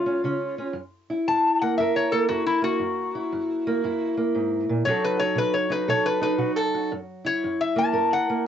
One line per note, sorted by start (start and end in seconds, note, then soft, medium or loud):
0.00 0.22 C#3 medium
0.00 0.74 G#3 medium
0.00 0.75 F4 medium
0.06 0.23 C#4 medium
0.24 0.72 C#3 medium
0.24 0.57 C#4 medium
0.58 0.74 C#4 soft
0.73 1.23 F#2 medium
1.10 2.29 E4 medium
1.28 1.76 F#2 medium
1.28 1.61 A5 medium
1.61 2.11 A#3 medium
1.61 1.77 F#5 medium
1.77 2.27 F#2 medium
1.77 2.80 A#4 medium
1.77 1.95 E5 medium
1.96 2.13 C#5 medium
2.12 2.61 A#3 medium
2.12 2.28 A4 medium
2.29 2.78 F#2 medium
2.29 2.79 E4 medium
2.29 2.46 F#4 medium
2.46 2.63 E4 medium
2.62 3.66 A#3 medium
2.62 4.14 F#4 medium
2.79 3.28 F#2 medium
3.15 3.83 E4 medium
3.32 3.81 F#2 medium
3.67 4.16 A#3 medium
3.84 4.32 F#2 medium
3.84 4.85 E4 medium
4.17 4.87 A#3 medium
4.35 4.69 G#2 medium
4.69 4.86 A#2 medium
4.85 5.34 B2 medium
4.85 8.47 F#3 medium
4.85 5.69 D#4 medium
4.85 5.19 F#4 medium
4.85 5.03 C#5 loud
4.90 5.87 A4 medium
5.04 5.21 B4 medium
5.19 6.37 F#4 medium
5.19 5.37 C#5 medium
5.35 5.84 B2 medium
5.35 5.55 B4 medium
5.54 5.71 C#5 medium
5.70 6.20 D#4 medium
5.70 5.89 B4 medium
5.88 6.36 B2 medium
5.88 6.38 A4 medium
5.88 6.06 C#5 medium
6.06 6.21 B4 medium
6.21 6.89 D#4 medium
6.21 6.51 B4 medium
6.38 6.87 B2 medium
6.38 6.56 F#4 medium
6.56 6.91 A4 medium
6.74 6.90 F#4 medium
6.92 7.39 F#2 medium
7.25 8.47 E4 medium
7.25 7.59 C#5 medium
7.44 7.91 F#2 medium
7.61 7.77 E5 medium
7.76 8.27 A#3 medium
7.76 8.11 A5 medium
7.92 8.41 F#2 medium
7.92 8.45 A#4 medium
8.13 8.45 F#5 medium
8.30 8.47 A#3 medium